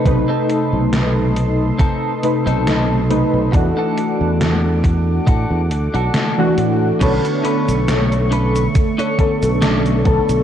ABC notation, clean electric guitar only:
X:1
M:4/4
L:1/16
Q:"Swing 16ths" 1/4=69
K:Emix
V:1 name="Clean electric guitar"
z [=C^DA]3 z4 [CDA]2 z [CDA]3 z2 | z [DFA]3 z4 [DFA]2 z [DFA]3 z2 | [CDAB] z [CDAB]2 z2 [CDAB]2 z [CDAc] z2 [CDAd]2 z2 |]